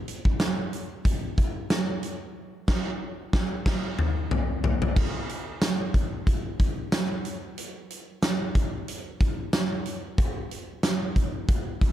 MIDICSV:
0, 0, Header, 1, 2, 480
1, 0, Start_track
1, 0, Tempo, 652174
1, 1734, Time_signature, 4, 2, 24, 8
1, 8775, End_track
2, 0, Start_track
2, 0, Title_t, "Drums"
2, 57, Note_on_c, 9, 42, 71
2, 131, Note_off_c, 9, 42, 0
2, 185, Note_on_c, 9, 36, 90
2, 259, Note_off_c, 9, 36, 0
2, 293, Note_on_c, 9, 38, 102
2, 294, Note_on_c, 9, 42, 89
2, 367, Note_off_c, 9, 38, 0
2, 368, Note_off_c, 9, 42, 0
2, 536, Note_on_c, 9, 42, 68
2, 610, Note_off_c, 9, 42, 0
2, 774, Note_on_c, 9, 36, 96
2, 776, Note_on_c, 9, 42, 80
2, 847, Note_off_c, 9, 36, 0
2, 849, Note_off_c, 9, 42, 0
2, 1014, Note_on_c, 9, 42, 70
2, 1015, Note_on_c, 9, 36, 89
2, 1087, Note_off_c, 9, 42, 0
2, 1088, Note_off_c, 9, 36, 0
2, 1253, Note_on_c, 9, 38, 112
2, 1255, Note_on_c, 9, 42, 88
2, 1327, Note_off_c, 9, 38, 0
2, 1328, Note_off_c, 9, 42, 0
2, 1492, Note_on_c, 9, 42, 72
2, 1565, Note_off_c, 9, 42, 0
2, 1972, Note_on_c, 9, 38, 102
2, 1972, Note_on_c, 9, 49, 77
2, 1973, Note_on_c, 9, 36, 107
2, 2046, Note_off_c, 9, 38, 0
2, 2046, Note_off_c, 9, 49, 0
2, 2047, Note_off_c, 9, 36, 0
2, 2453, Note_on_c, 9, 36, 103
2, 2453, Note_on_c, 9, 38, 100
2, 2527, Note_off_c, 9, 36, 0
2, 2527, Note_off_c, 9, 38, 0
2, 2693, Note_on_c, 9, 36, 110
2, 2694, Note_on_c, 9, 38, 109
2, 2694, Note_on_c, 9, 49, 83
2, 2767, Note_off_c, 9, 36, 0
2, 2767, Note_off_c, 9, 38, 0
2, 2767, Note_off_c, 9, 49, 0
2, 2934, Note_on_c, 9, 45, 88
2, 3007, Note_off_c, 9, 45, 0
2, 3174, Note_on_c, 9, 43, 94
2, 3248, Note_off_c, 9, 43, 0
2, 3414, Note_on_c, 9, 43, 102
2, 3488, Note_off_c, 9, 43, 0
2, 3546, Note_on_c, 9, 43, 91
2, 3620, Note_off_c, 9, 43, 0
2, 3654, Note_on_c, 9, 36, 111
2, 3654, Note_on_c, 9, 49, 94
2, 3728, Note_off_c, 9, 36, 0
2, 3728, Note_off_c, 9, 49, 0
2, 3896, Note_on_c, 9, 42, 70
2, 3970, Note_off_c, 9, 42, 0
2, 4133, Note_on_c, 9, 54, 67
2, 4134, Note_on_c, 9, 38, 109
2, 4135, Note_on_c, 9, 42, 95
2, 4207, Note_off_c, 9, 38, 0
2, 4207, Note_off_c, 9, 54, 0
2, 4208, Note_off_c, 9, 42, 0
2, 4374, Note_on_c, 9, 36, 85
2, 4375, Note_on_c, 9, 42, 73
2, 4448, Note_off_c, 9, 36, 0
2, 4449, Note_off_c, 9, 42, 0
2, 4614, Note_on_c, 9, 36, 102
2, 4616, Note_on_c, 9, 42, 89
2, 4688, Note_off_c, 9, 36, 0
2, 4690, Note_off_c, 9, 42, 0
2, 4856, Note_on_c, 9, 36, 94
2, 4856, Note_on_c, 9, 42, 70
2, 4929, Note_off_c, 9, 36, 0
2, 4929, Note_off_c, 9, 42, 0
2, 5094, Note_on_c, 9, 54, 72
2, 5095, Note_on_c, 9, 38, 114
2, 5096, Note_on_c, 9, 42, 91
2, 5168, Note_off_c, 9, 54, 0
2, 5169, Note_off_c, 9, 38, 0
2, 5170, Note_off_c, 9, 42, 0
2, 5334, Note_on_c, 9, 42, 68
2, 5408, Note_off_c, 9, 42, 0
2, 5576, Note_on_c, 9, 42, 87
2, 5649, Note_off_c, 9, 42, 0
2, 5817, Note_on_c, 9, 42, 68
2, 5891, Note_off_c, 9, 42, 0
2, 6053, Note_on_c, 9, 54, 66
2, 6054, Note_on_c, 9, 38, 107
2, 6055, Note_on_c, 9, 42, 92
2, 6127, Note_off_c, 9, 38, 0
2, 6127, Note_off_c, 9, 54, 0
2, 6129, Note_off_c, 9, 42, 0
2, 6294, Note_on_c, 9, 36, 85
2, 6296, Note_on_c, 9, 42, 75
2, 6368, Note_off_c, 9, 36, 0
2, 6370, Note_off_c, 9, 42, 0
2, 6536, Note_on_c, 9, 42, 84
2, 6609, Note_off_c, 9, 42, 0
2, 6775, Note_on_c, 9, 36, 94
2, 6775, Note_on_c, 9, 42, 74
2, 6849, Note_off_c, 9, 36, 0
2, 6849, Note_off_c, 9, 42, 0
2, 7014, Note_on_c, 9, 54, 71
2, 7015, Note_on_c, 9, 38, 115
2, 7016, Note_on_c, 9, 42, 90
2, 7087, Note_off_c, 9, 54, 0
2, 7088, Note_off_c, 9, 38, 0
2, 7090, Note_off_c, 9, 42, 0
2, 7253, Note_on_c, 9, 42, 73
2, 7327, Note_off_c, 9, 42, 0
2, 7494, Note_on_c, 9, 36, 112
2, 7494, Note_on_c, 9, 42, 84
2, 7568, Note_off_c, 9, 36, 0
2, 7568, Note_off_c, 9, 42, 0
2, 7736, Note_on_c, 9, 42, 72
2, 7810, Note_off_c, 9, 42, 0
2, 7972, Note_on_c, 9, 54, 66
2, 7973, Note_on_c, 9, 38, 108
2, 7974, Note_on_c, 9, 42, 96
2, 8046, Note_off_c, 9, 54, 0
2, 8047, Note_off_c, 9, 38, 0
2, 8048, Note_off_c, 9, 42, 0
2, 8214, Note_on_c, 9, 36, 82
2, 8216, Note_on_c, 9, 42, 71
2, 8288, Note_off_c, 9, 36, 0
2, 8290, Note_off_c, 9, 42, 0
2, 8454, Note_on_c, 9, 36, 106
2, 8456, Note_on_c, 9, 42, 86
2, 8527, Note_off_c, 9, 36, 0
2, 8530, Note_off_c, 9, 42, 0
2, 8695, Note_on_c, 9, 36, 92
2, 8695, Note_on_c, 9, 42, 71
2, 8768, Note_off_c, 9, 42, 0
2, 8769, Note_off_c, 9, 36, 0
2, 8775, End_track
0, 0, End_of_file